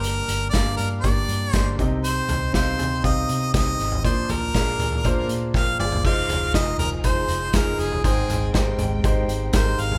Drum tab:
CC |----------------|----------------|----------------|x---------------|
HH |x-x-x-x-x-x-x-x-|x-x-x-x-x-x-x-x-|x-x-x-x-x-x-----|--x-x-x-x-x-x-x-|
SD |----o-------o---|----o-------o-o-|----o-------o---|----o-------o-o-|
T2 |----------------|----------------|--------------o-|----------------|
FT |----------------|--o---o--------o|--o---oo-------o|--o---o--------o|
BD |----o---o---o-o-|----o---o---o---|o---o---o---o---|o---o---o---o---|

CC |----------------|
HH |x-x-x-x-x-x-x-x-|
SD |----o-------o---|
T2 |----------------|
FT |--o---o--------o|
BD |o---o---o---o---|